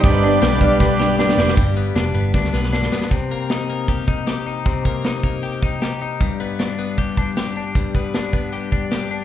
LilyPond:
<<
  \new Staff \with { instrumentName = "Analog synth pad" } { \time 4/4 \key c \minor \tempo 4 = 155 <b' d'' g'' d'''>1 | r1 | r1 | r1 |
r1 | r1 | }
  \new Staff \with { instrumentName = "Transistor combo organ" } { \time 4/4 \key c \minor <d' g' b' d''>4 <d' g' b' d''>8 <d' g' b' f''>8 <d' g' b' d''>4 <d' g' b' d''>4 | r1 | r1 | r1 |
r1 | r1 | }
  \new Staff \with { instrumentName = "Clean electric guitar" } { \time 4/4 \key c \minor g,8 d'8 g'8 d'8 g8 g'8 d'8 g'8 | g,8 b8 d'8 b8 d'8 b8 d'8 b8 | c8 bes8 ees'8 bes8 g'8 ees'8 g'8 ees'8 | c8 bes8 ees'8 bes8 g'8 ees'8 g'8 ees'8 |
g,8 b8 d'8 b8 g'8 d'8 g'8 d'8 | g,8 b8 d'8 b8 g'8 d'8 g'8 d'8 | }
  \new Staff \with { instrumentName = "Steel-string acoustic guitar" } { \time 4/4 \key c \minor <g, d g b d'>8 <g b d'>8 <g, d g b d'>8 <g b d'>8 <d g b d'>8 <g b d'>8 <g, d g b d'>8 <g b d'>8 | r1 | r1 | r1 |
r1 | r1 | }
  \new Staff \with { instrumentName = "Picked electric bass" } { \clef bass \time 4/4 \key c \minor g,,4 b,,8 b,,2 f,,8 | g,,4 f,,8 g,,8 d,8 b,,4 r8 | r1 | r1 |
r1 | r1 | }
  \new DrumStaff \with { instrumentName = "Drums" } \drummode { \time 4/4 <hh bd>8 hh8 <hh sn>8 <hh bd>8 <bd sn>8 sn8 sn16 sn16 sn16 sn16 | <hh bd>8 hh8 <hh sn>8 hh8 <bd sn>16 sn16 sn16 sn16 sn16 sn16 sn16 sn16 | <hh bd>8 hh8 <hh sn>8 hh8 <hh bd>8 <hh bd>8 <hh sn>8 hh8 | <hh bd>8 <hh bd>8 <hh sn>8 <hh bd>8 hh8 <hh bd>8 <hh sn>8 hh8 |
<hh bd>8 hh8 <hh sn>8 hh8 <hh bd>8 <hh bd>8 <hh sn>8 hh8 | <hh bd>8 <hh bd>8 <hh sn>8 <hh bd>8 hh8 <hh bd>8 <hh sn>8 hh8 | }
>>